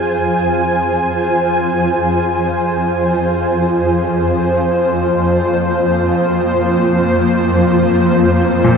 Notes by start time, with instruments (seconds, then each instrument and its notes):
Already playing: synth drone F2 F3, ambient pad F4 C5 G#5, singing bowl G#4
4.27 ambient pad A#3
8.64 grand piano A#2